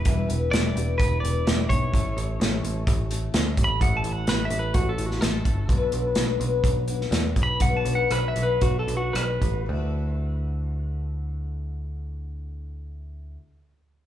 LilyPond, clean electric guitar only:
\new Staff \with { instrumentName = "Clean electric guitar" } { \time 4/4 \key d \major \tempo 4 = 126 b'8 r8 d''4 b'8 d''4 cis''8~ | cis''2~ cis''8 r8 \tuplet 3/2 { r4 b''8 } | \tuplet 3/2 { fis''8 a''8 fis''8 b'8 e''8 b'8 fis'8 a'8 fis'8 } a'4~ | a'4 r2 \tuplet 3/2 { r4 b''8 } |
\tuplet 3/2 { fis''8 a''8 fis''8 b'8 e''8 b'8 fis'8 a'8 fis'8 } b'4 | r1 | r1 | }